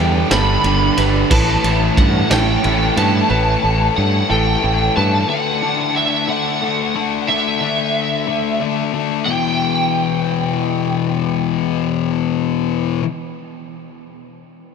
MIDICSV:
0, 0, Header, 1, 8, 480
1, 0, Start_track
1, 0, Tempo, 662983
1, 947, Time_signature, 6, 3, 24, 8
1, 10677, End_track
2, 0, Start_track
2, 0, Title_t, "Lead electric guitar"
2, 0, Program_c, 0, 29
2, 0, Note_on_c, 0, 79, 107
2, 232, Note_on_c, 0, 83, 113
2, 253, Note_off_c, 0, 79, 0
2, 741, Note_off_c, 0, 83, 0
2, 953, Note_on_c, 0, 81, 115
2, 1429, Note_off_c, 0, 81, 0
2, 1432, Note_on_c, 0, 78, 89
2, 1672, Note_off_c, 0, 78, 0
2, 1675, Note_on_c, 0, 79, 98
2, 2151, Note_off_c, 0, 79, 0
2, 2154, Note_on_c, 0, 81, 107
2, 2391, Note_off_c, 0, 81, 0
2, 2399, Note_on_c, 0, 81, 110
2, 2845, Note_off_c, 0, 81, 0
2, 2874, Note_on_c, 0, 78, 101
2, 3114, Note_off_c, 0, 78, 0
2, 3117, Note_on_c, 0, 79, 99
2, 3592, Note_off_c, 0, 79, 0
2, 3595, Note_on_c, 0, 81, 100
2, 3816, Note_off_c, 0, 81, 0
2, 3832, Note_on_c, 0, 78, 100
2, 4316, Note_on_c, 0, 76, 89
2, 4325, Note_off_c, 0, 78, 0
2, 4536, Note_off_c, 0, 76, 0
2, 4558, Note_on_c, 0, 78, 96
2, 5245, Note_off_c, 0, 78, 0
2, 5274, Note_on_c, 0, 76, 96
2, 6442, Note_off_c, 0, 76, 0
2, 6702, Note_on_c, 0, 79, 102
2, 9388, Note_off_c, 0, 79, 0
2, 10677, End_track
3, 0, Start_track
3, 0, Title_t, "Felt piano"
3, 0, Program_c, 1, 0
3, 225, Note_on_c, 1, 69, 86
3, 705, Note_on_c, 1, 71, 83
3, 706, Note_off_c, 1, 69, 0
3, 935, Note_off_c, 1, 71, 0
3, 946, Note_on_c, 1, 71, 95
3, 1427, Note_off_c, 1, 71, 0
3, 1666, Note_on_c, 1, 69, 84
3, 2148, Note_off_c, 1, 69, 0
3, 2149, Note_on_c, 1, 71, 84
3, 2377, Note_off_c, 1, 71, 0
3, 2388, Note_on_c, 1, 71, 102
3, 2869, Note_off_c, 1, 71, 0
3, 3112, Note_on_c, 1, 69, 91
3, 3591, Note_off_c, 1, 69, 0
3, 3594, Note_on_c, 1, 71, 89
3, 3832, Note_off_c, 1, 71, 0
3, 10677, End_track
4, 0, Start_track
4, 0, Title_t, "String section"
4, 0, Program_c, 2, 48
4, 0, Note_on_c, 2, 59, 79
4, 0, Note_on_c, 2, 62, 72
4, 0, Note_on_c, 2, 64, 72
4, 0, Note_on_c, 2, 67, 74
4, 0, Note_on_c, 2, 74, 85
4, 917, Note_off_c, 2, 59, 0
4, 917, Note_off_c, 2, 62, 0
4, 921, Note_off_c, 2, 64, 0
4, 921, Note_off_c, 2, 74, 0
4, 931, Note_off_c, 2, 67, 0
4, 940, Note_on_c, 2, 67, 67
4, 940, Note_on_c, 2, 73, 95
4, 941, Note_on_c, 2, 57, 80
4, 941, Note_on_c, 2, 64, 72
4, 943, Note_on_c, 2, 61, 75
4, 3797, Note_off_c, 2, 67, 0
4, 3797, Note_off_c, 2, 73, 0
4, 3798, Note_off_c, 2, 57, 0
4, 3798, Note_off_c, 2, 61, 0
4, 3824, Note_on_c, 2, 62, 87
4, 3824, Note_on_c, 2, 69, 88
4, 5237, Note_off_c, 2, 64, 0
4, 5252, Note_off_c, 2, 62, 0
4, 5252, Note_off_c, 2, 69, 0
4, 10677, End_track
5, 0, Start_track
5, 0, Title_t, "Distorted electric guitar"
5, 0, Program_c, 3, 30
5, 0, Note_on_c, 3, 59, 107
5, 0, Note_on_c, 3, 62, 108
5, 226, Note_off_c, 3, 59, 0
5, 230, Note_off_c, 3, 62, 0
5, 235, Note_on_c, 3, 59, 108
5, 239, Note_on_c, 3, 62, 114
5, 468, Note_off_c, 3, 59, 0
5, 471, Note_off_c, 3, 62, 0
5, 476, Note_on_c, 3, 59, 85
5, 480, Note_on_c, 3, 62, 89
5, 711, Note_off_c, 3, 59, 0
5, 714, Note_off_c, 3, 62, 0
5, 720, Note_on_c, 3, 59, 86
5, 723, Note_on_c, 3, 62, 93
5, 939, Note_off_c, 3, 59, 0
5, 941, Note_off_c, 3, 62, 0
5, 959, Note_on_c, 3, 61, 108
5, 962, Note_on_c, 3, 64, 110
5, 1189, Note_off_c, 3, 61, 0
5, 1194, Note_off_c, 3, 64, 0
5, 1198, Note_on_c, 3, 61, 107
5, 1202, Note_on_c, 3, 64, 112
5, 1673, Note_off_c, 3, 61, 0
5, 1676, Note_off_c, 3, 64, 0
5, 1681, Note_on_c, 3, 61, 106
5, 1684, Note_on_c, 3, 64, 104
5, 1909, Note_off_c, 3, 61, 0
5, 1914, Note_off_c, 3, 64, 0
5, 1918, Note_on_c, 3, 61, 92
5, 1922, Note_on_c, 3, 64, 80
5, 2151, Note_off_c, 3, 61, 0
5, 2155, Note_off_c, 3, 64, 0
5, 2160, Note_on_c, 3, 61, 95
5, 2164, Note_on_c, 3, 64, 108
5, 2380, Note_off_c, 3, 61, 0
5, 2382, Note_off_c, 3, 64, 0
5, 10677, End_track
6, 0, Start_track
6, 0, Title_t, "Distorted electric guitar"
6, 0, Program_c, 4, 30
6, 0, Note_on_c, 4, 43, 87
6, 0, Note_on_c, 4, 50, 97
6, 0, Note_on_c, 4, 55, 98
6, 214, Note_off_c, 4, 43, 0
6, 221, Note_off_c, 4, 50, 0
6, 223, Note_on_c, 4, 43, 97
6, 229, Note_off_c, 4, 55, 0
6, 229, Note_on_c, 4, 50, 99
6, 232, Note_on_c, 4, 55, 93
6, 457, Note_off_c, 4, 43, 0
6, 460, Note_off_c, 4, 50, 0
6, 465, Note_on_c, 4, 43, 87
6, 469, Note_off_c, 4, 55, 0
6, 469, Note_on_c, 4, 50, 85
6, 472, Note_on_c, 4, 55, 87
6, 698, Note_off_c, 4, 43, 0
6, 703, Note_off_c, 4, 50, 0
6, 707, Note_on_c, 4, 43, 78
6, 712, Note_on_c, 4, 50, 89
6, 713, Note_off_c, 4, 55, 0
6, 716, Note_on_c, 4, 55, 98
6, 933, Note_off_c, 4, 43, 0
6, 935, Note_off_c, 4, 50, 0
6, 945, Note_off_c, 4, 55, 0
6, 946, Note_on_c, 4, 45, 89
6, 948, Note_on_c, 4, 52, 99
6, 953, Note_on_c, 4, 57, 105
6, 1182, Note_off_c, 4, 45, 0
6, 1185, Note_on_c, 4, 45, 90
6, 1187, Note_off_c, 4, 52, 0
6, 1190, Note_on_c, 4, 52, 93
6, 1191, Note_off_c, 4, 57, 0
6, 1194, Note_on_c, 4, 57, 92
6, 1657, Note_off_c, 4, 45, 0
6, 1666, Note_on_c, 4, 45, 93
6, 1667, Note_off_c, 4, 52, 0
6, 1670, Note_on_c, 4, 52, 97
6, 1671, Note_off_c, 4, 57, 0
6, 1674, Note_on_c, 4, 57, 92
6, 1899, Note_off_c, 4, 45, 0
6, 1908, Note_on_c, 4, 45, 92
6, 1909, Note_off_c, 4, 52, 0
6, 1912, Note_on_c, 4, 52, 82
6, 1914, Note_off_c, 4, 57, 0
6, 1916, Note_on_c, 4, 57, 102
6, 2139, Note_off_c, 4, 45, 0
6, 2148, Note_off_c, 4, 52, 0
6, 2148, Note_on_c, 4, 45, 99
6, 2150, Note_on_c, 4, 52, 89
6, 2154, Note_off_c, 4, 57, 0
6, 2157, Note_on_c, 4, 57, 90
6, 2376, Note_off_c, 4, 45, 0
6, 2385, Note_on_c, 4, 45, 93
6, 2388, Note_off_c, 4, 52, 0
6, 2391, Note_on_c, 4, 52, 111
6, 2392, Note_off_c, 4, 57, 0
6, 2394, Note_on_c, 4, 57, 99
6, 2616, Note_off_c, 4, 45, 0
6, 2624, Note_off_c, 4, 52, 0
6, 2624, Note_on_c, 4, 45, 85
6, 2627, Note_on_c, 4, 52, 86
6, 2630, Note_off_c, 4, 57, 0
6, 2633, Note_on_c, 4, 57, 99
6, 3097, Note_off_c, 4, 45, 0
6, 3106, Note_on_c, 4, 45, 86
6, 3108, Note_off_c, 4, 52, 0
6, 3111, Note_on_c, 4, 52, 108
6, 3113, Note_off_c, 4, 57, 0
6, 3116, Note_on_c, 4, 57, 114
6, 3338, Note_off_c, 4, 45, 0
6, 3347, Note_on_c, 4, 45, 90
6, 3348, Note_off_c, 4, 52, 0
6, 3351, Note_on_c, 4, 52, 93
6, 3352, Note_off_c, 4, 57, 0
6, 3355, Note_on_c, 4, 57, 102
6, 3577, Note_off_c, 4, 45, 0
6, 3586, Note_on_c, 4, 45, 98
6, 3588, Note_off_c, 4, 52, 0
6, 3591, Note_off_c, 4, 57, 0
6, 3591, Note_on_c, 4, 52, 103
6, 3594, Note_on_c, 4, 57, 103
6, 3813, Note_off_c, 4, 45, 0
6, 3828, Note_on_c, 4, 50, 96
6, 3830, Note_off_c, 4, 52, 0
6, 3833, Note_off_c, 4, 57, 0
6, 3833, Note_on_c, 4, 57, 108
6, 3837, Note_on_c, 4, 62, 108
6, 4067, Note_off_c, 4, 50, 0
6, 4070, Note_on_c, 4, 50, 88
6, 4071, Note_off_c, 4, 57, 0
6, 4074, Note_on_c, 4, 57, 93
6, 4076, Note_off_c, 4, 62, 0
6, 4078, Note_on_c, 4, 62, 100
6, 4539, Note_off_c, 4, 50, 0
6, 4543, Note_off_c, 4, 57, 0
6, 4547, Note_on_c, 4, 50, 101
6, 4551, Note_on_c, 4, 57, 106
6, 4552, Note_off_c, 4, 62, 0
6, 4555, Note_on_c, 4, 62, 113
6, 4782, Note_off_c, 4, 50, 0
6, 4787, Note_off_c, 4, 57, 0
6, 4791, Note_on_c, 4, 50, 86
6, 4796, Note_on_c, 4, 57, 94
6, 4797, Note_off_c, 4, 62, 0
6, 4800, Note_on_c, 4, 62, 91
6, 5024, Note_off_c, 4, 50, 0
6, 5028, Note_off_c, 4, 57, 0
6, 5033, Note_on_c, 4, 50, 82
6, 5037, Note_on_c, 4, 57, 98
6, 5039, Note_off_c, 4, 62, 0
6, 5042, Note_on_c, 4, 62, 89
6, 5264, Note_off_c, 4, 50, 0
6, 5269, Note_off_c, 4, 57, 0
6, 5272, Note_off_c, 4, 62, 0
6, 5273, Note_on_c, 4, 50, 91
6, 5278, Note_on_c, 4, 57, 102
6, 5281, Note_on_c, 4, 62, 109
6, 5500, Note_off_c, 4, 50, 0
6, 5503, Note_off_c, 4, 57, 0
6, 5508, Note_on_c, 4, 50, 95
6, 5509, Note_off_c, 4, 62, 0
6, 5512, Note_on_c, 4, 57, 101
6, 5517, Note_on_c, 4, 62, 105
6, 5981, Note_off_c, 4, 50, 0
6, 5985, Note_off_c, 4, 57, 0
6, 5988, Note_off_c, 4, 62, 0
6, 5989, Note_on_c, 4, 50, 102
6, 5994, Note_on_c, 4, 57, 96
6, 5997, Note_on_c, 4, 62, 116
6, 6221, Note_off_c, 4, 50, 0
6, 6225, Note_off_c, 4, 57, 0
6, 6229, Note_off_c, 4, 62, 0
6, 6230, Note_on_c, 4, 50, 82
6, 6233, Note_on_c, 4, 57, 96
6, 6238, Note_on_c, 4, 62, 99
6, 6457, Note_off_c, 4, 50, 0
6, 6461, Note_off_c, 4, 57, 0
6, 6466, Note_off_c, 4, 62, 0
6, 6466, Note_on_c, 4, 50, 87
6, 6470, Note_on_c, 4, 57, 100
6, 6474, Note_on_c, 4, 62, 106
6, 6693, Note_off_c, 4, 50, 0
6, 6695, Note_off_c, 4, 57, 0
6, 6697, Note_off_c, 4, 62, 0
6, 6699, Note_on_c, 4, 40, 93
6, 6713, Note_on_c, 4, 47, 99
6, 6729, Note_on_c, 4, 52, 98
6, 9414, Note_off_c, 4, 40, 0
6, 9428, Note_off_c, 4, 47, 0
6, 9444, Note_off_c, 4, 52, 0
6, 10677, End_track
7, 0, Start_track
7, 0, Title_t, "Fingered electric bass"
7, 0, Program_c, 5, 33
7, 0, Note_on_c, 5, 40, 93
7, 163, Note_off_c, 5, 40, 0
7, 225, Note_on_c, 5, 31, 99
7, 404, Note_off_c, 5, 31, 0
7, 463, Note_on_c, 5, 31, 90
7, 643, Note_off_c, 5, 31, 0
7, 709, Note_on_c, 5, 31, 86
7, 887, Note_off_c, 5, 31, 0
7, 950, Note_on_c, 5, 33, 103
7, 1128, Note_off_c, 5, 33, 0
7, 1187, Note_on_c, 5, 33, 99
7, 1366, Note_off_c, 5, 33, 0
7, 1430, Note_on_c, 5, 43, 87
7, 1608, Note_off_c, 5, 43, 0
7, 1674, Note_on_c, 5, 33, 100
7, 1851, Note_off_c, 5, 33, 0
7, 1919, Note_on_c, 5, 33, 101
7, 2094, Note_off_c, 5, 33, 0
7, 2152, Note_on_c, 5, 43, 98
7, 2330, Note_off_c, 5, 43, 0
7, 2392, Note_on_c, 5, 33, 114
7, 2570, Note_off_c, 5, 33, 0
7, 2634, Note_on_c, 5, 33, 91
7, 2811, Note_off_c, 5, 33, 0
7, 2880, Note_on_c, 5, 43, 93
7, 3055, Note_off_c, 5, 43, 0
7, 3118, Note_on_c, 5, 33, 102
7, 3294, Note_off_c, 5, 33, 0
7, 3359, Note_on_c, 5, 33, 100
7, 3534, Note_off_c, 5, 33, 0
7, 3599, Note_on_c, 5, 43, 99
7, 3774, Note_off_c, 5, 43, 0
7, 10677, End_track
8, 0, Start_track
8, 0, Title_t, "Drums"
8, 224, Note_on_c, 9, 38, 121
8, 224, Note_on_c, 9, 51, 118
8, 296, Note_off_c, 9, 38, 0
8, 296, Note_off_c, 9, 51, 0
8, 464, Note_on_c, 9, 51, 95
8, 537, Note_off_c, 9, 51, 0
8, 706, Note_on_c, 9, 51, 87
8, 778, Note_off_c, 9, 51, 0
8, 946, Note_on_c, 9, 49, 108
8, 948, Note_on_c, 9, 36, 117
8, 1019, Note_off_c, 9, 49, 0
8, 1020, Note_off_c, 9, 36, 0
8, 1189, Note_on_c, 9, 51, 86
8, 1261, Note_off_c, 9, 51, 0
8, 1430, Note_on_c, 9, 36, 86
8, 1432, Note_on_c, 9, 51, 85
8, 1502, Note_off_c, 9, 36, 0
8, 1504, Note_off_c, 9, 51, 0
8, 1670, Note_on_c, 9, 38, 119
8, 1670, Note_on_c, 9, 51, 107
8, 1743, Note_off_c, 9, 38, 0
8, 1743, Note_off_c, 9, 51, 0
8, 1911, Note_on_c, 9, 51, 85
8, 1984, Note_off_c, 9, 51, 0
8, 2152, Note_on_c, 9, 51, 81
8, 2224, Note_off_c, 9, 51, 0
8, 10677, End_track
0, 0, End_of_file